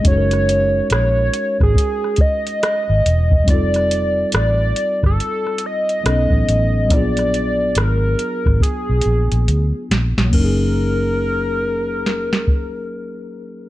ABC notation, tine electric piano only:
X:1
M:4/4
L:1/8
Q:"Swing 16ths" 1/4=70
K:F#
V:1 name="Tine electric piano"
[G,CDF=A^A]8 | [=G,=C_E=F=A]6 [^F,B,^CDA]2 | [F,B,=DEG]8 | [F,A,CDG]8 |]